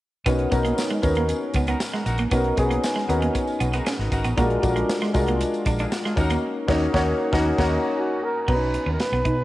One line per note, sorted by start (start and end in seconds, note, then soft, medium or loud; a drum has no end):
0.26 0.45 B1 medium
0.26 0.47 B3 medium
0.26 0.34 B3 medium
0.26 0.48 C#4 medium
0.26 0.48 D#4 medium
0.26 0.48 F#4 medium
0.26 0.48 A#4 medium
0.26 kick loud
0.26 closed hi-hat medium
0.26 tambourine medium
0.39 closed hi-hat soft
0.51 0.71 B1 medium
0.51 0.94 B3 medium
0.51 0.94 C#4 medium
0.51 0.94 D#4 medium
0.51 0.95 F#4 medium
0.51 0.95 A#4 medium
0.51 muted clean electric guitar stroke soft
0.51 kick loud
0.51 closed hi-hat medium
0.51 tambourine soft
0.65 0.72 A#3 medium
0.65 closed hi-hat medium
0.65 tambourine soft
0.78 snare medium
0.78 tambourine medium
0.90 0.98 G#3 medium
0.90 closed hi-hat soft
1.02 1.31 D#2 medium
1.02 1.88 B3 medium
1.02 1.88 C#4 medium
1.02 1.88 D#4 medium
1.02 1.88 F#4 medium
1.02 1.88 A#4 medium
1.02 muted clean electric guitar stroke soft
1.02 kick loud
1.02 closed hi-hat medium
1.02 tambourine medium
1.15 1.24 A#3 medium
1.15 closed hi-hat soft
1.29 muted clean electric guitar stroke soft
1.29 closed hi-hat medium
1.29 tambourine soft
1.54 1.73 C#2 medium
1.54 1.63 B3 medium
1.54 kick loud
1.54 closed hi-hat medium
1.54 tambourine soft
1.67 1.76 B3 medium
1.67 1.79 D#4 medium
1.67 1.79 F#4 medium
1.67 1.79 A#4 medium
1.67 closed hi-hat soft
1.67 tambourine soft
1.80 snare loud
1.80 tambourine medium
1.93 2.01 G#3 medium
1.93 2.04 D#4 medium
1.93 2.04 F#4 medium
1.93 2.04 A#4 medium
1.93 snare soft
2.06 2.24 A#1 medium
2.06 2.23 D#4 medium
2.06 2.22 F#4 medium
2.06 2.22 A#4 loud
2.06 muted clean electric guitar stroke soft
2.06 closed hi-hat medium
2.06 tambourine soft
2.18 2.27 A#3 medium
2.18 closed hi-hat medium
2.31 2.50 B1 medium
2.31 2.53 B3 medium
2.31 2.39 B3 medium
2.31 2.53 C#4 medium
2.31 2.53 D#4 medium
2.31 2.53 F#4 medium
2.31 2.53 A#4 medium
2.31 kick loud
2.31 closed hi-hat medium
2.31 tambourine medium
2.44 closed hi-hat soft
2.57 2.76 B1 medium
2.57 3.00 B3 medium
2.57 3.00 C#4 medium
2.57 3.00 D#4 medium
2.57 3.00 F#4 medium
2.57 3.00 G#4 medium
2.57 muted clean electric guitar stroke soft
2.57 kick loud
2.57 closed hi-hat medium
2.57 tambourine soft
2.70 2.78 A#3 medium
2.70 closed hi-hat medium
2.83 snare loud
2.83 tambourine medium
2.96 3.03 G#3 medium
2.96 snare soft
3.08 3.27 D#2 medium
3.08 3.94 B3 medium
3.08 3.94 C#4 medium
3.08 3.94 D#4 medium
3.08 3.94 F#4 medium
3.08 3.94 A#4 medium
3.08 muted clean electric guitar stroke soft
3.08 closed hi-hat medium
3.08 tambourine soft
3.22 3.30 A#3 medium
3.22 closed hi-hat soft
3.35 muted clean electric guitar stroke soft
3.35 kick medium
3.35 closed hi-hat medium
3.35 tambourine soft
3.47 tambourine soft
3.60 3.79 B1 medium
3.60 3.68 B3 medium
3.60 closed hi-hat medium
3.60 tambourine soft
3.73 3.81 B3 medium
3.73 3.84 D#4 medium
3.73 3.84 F#4 medium
3.73 3.84 A#4 medium
3.73 closed hi-hat medium
3.73 tambourine soft
3.86 3.94 C#4 medium
3.86 snare loud
3.86 tambourine medium
3.98 4.08 G#1 medium
3.98 4.09 D#4 medium
3.98 4.09 F#4 medium
3.98 4.09 A#4 medium
3.98 snare soft
4.12 4.21 G#1 medium
4.12 4.28 D#4 medium
4.12 4.28 F#4 loud
4.12 4.28 A#4 loud
4.12 muted clean electric guitar stroke soft
4.12 kick medium
4.12 closed hi-hat medium
4.12 tambourine soft
4.24 4.34 A1 medium
4.24 4.32 B3 medium
4.24 closed hi-hat medium
4.24 tambourine soft
4.37 4.56 A#1 medium
4.37 4.58 G#3 medium
4.37 4.45 A#3 medium
4.37 4.58 D4 medium
4.37 4.59 F4 medium
4.37 4.59 F#4 medium
4.37 4.59 A#4 medium
4.37 kick loud
4.37 closed hi-hat medium
4.37 tambourine soft
4.50 closed hi-hat soft
4.61 4.82 A#1 medium
4.61 5.05 G#3 medium
4.61 5.05 D4 medium
4.61 5.05 F4 medium
4.61 5.05 F#4 medium
4.61 4.69 A4 medium
4.61 muted clean electric guitar stroke soft
4.61 kick loud
4.61 closed hi-hat medium
4.61 tambourine soft
4.69 5.08 A#4 medium
4.76 4.83 G#3 medium
4.76 closed hi-hat soft
4.89 snare loud
4.89 tambourine medium
5.01 5.09 G#3 medium
5.01 snare soft
5.01 closed hi-hat soft
5.13 5.42 C2 medium
5.13 5.99 G#3 medium
5.13 5.99 D4 medium
5.13 5.99 F4 medium
5.13 5.99 F#4 medium
5.13 5.99 A#4 medium
5.13 muted clean electric guitar stroke soft
5.13 kick medium
5.13 closed hi-hat medium
5.13 tambourine medium
5.27 5.36 A#3 medium
5.27 closed hi-hat medium
5.41 muted clean electric guitar stroke soft
5.41 closed hi-hat medium
5.41 tambourine soft
5.54 closed hi-hat soft
5.54 tambourine soft
5.66 5.84 A#1 medium
5.66 5.74 D4 medium
5.66 kick loud
5.66 closed hi-hat medium
5.66 tambourine soft
5.79 5.90 D4 medium
5.79 5.87 D4 medium
5.79 5.90 F4 medium
5.79 5.90 G#4 medium
5.79 closed hi-hat medium
5.79 tambourine soft
5.92 snare loud
5.92 tambourine medium
6.04 6.13 G#3 medium
6.04 6.15 D4 medium
6.04 6.15 F4 medium
6.04 6.15 G#4 medium
6.04 snare soft
6.16 6.35 D#2 medium
6.16 6.42 A#3 medium
6.16 6.42 C#4 medium
6.16 6.42 D#4 medium
6.16 6.33 D#4 medium
6.16 6.42 F#4 medium
6.16 6.33 F#4 medium
6.16 6.43 A#4 medium
6.16 6.33 A#4 loud
6.16 muted clean electric guitar stroke soft
6.16 kick loud
6.16 closed hi-hat medium
6.16 tambourine soft
6.30 6.38 A#3 medium
6.30 closed hi-hat medium
6.30 tambourine soft
6.68 6.86 D#2 medium
6.68 6.85 A#3 medium
6.68 6.85 C#4 medium
6.68 6.86 D#4 loud
6.68 6.82 D#4 medium
6.68 6.86 F#4 medium
6.68 6.82 F#4 medium
6.68 6.82 A#4 medium
6.68 6.86 C#5 medium
6.68 kick loud
6.68 snare loud
6.68 crash medium
6.93 7.11 D#2 medium
6.93 7.11 A#3 medium
6.93 7.11 C#4 loud
6.93 7.11 D#4 medium
6.93 7.08 D#4 loud
6.93 7.12 F#4 loud
6.93 7.08 F#4 loud
6.93 7.07 A#4 medium
6.93 7.12 C#5 medium
6.93 kick loud
6.93 snare medium
7.32 7.50 D#2 loud
7.32 7.50 A#3 medium
7.32 7.50 C#4 medium
7.32 7.46 D#4 loud
7.32 7.50 D#4 medium
7.32 7.46 F#4 loud
7.32 7.50 F#4 medium
7.32 7.46 A#4 loud
7.32 7.50 A#4 loud
7.32 kick loud
7.32 snare loud
7.58 7.76 D#2 medium
7.58 7.75 A#3 medium
7.58 7.76 C#4 medium
7.58 7.76 D#4 medium
7.58 7.72 D#4 medium
7.58 7.72 F#4 loud
7.58 7.76 F#4 medium
7.58 7.72 A#4 loud
7.58 7.76 A#4 medium
7.58 kick loud
7.58 snare medium
7.58 crash medium
7.99 8.26 F#4 medium
8.24 8.42 A#4 medium
8.42 8.51 A#4 medium
8.47 8.76 B1 medium
8.47 9.33 B3 medium
8.47 8.56 B3 medium
8.47 9.33 C#4 medium
8.47 8.54 D4 soft
8.47 9.33 F#4 medium
8.47 8.92 B4 loud
8.47 9.34 A#5 medium
8.47 kick loud
8.47 crash medium
8.54 9.36 D#4 medium
8.74 muted clean electric guitar stroke soft
8.74 closed hi-hat medium
8.86 8.96 D#2 medium
8.86 8.94 C#4 medium
8.93 9.02 A#4 medium
9.00 9.44 B4 loud
9.00 muted clean electric guitar stroke soft
9.00 snare medium
9.00 closed hi-hat medium
9.12 9.21 B1 medium
9.12 9.20 B3 medium
9.25 9.44 B2 medium
9.25 9.33 D#4 medium
9.25 kick medium
9.25 closed hi-hat medium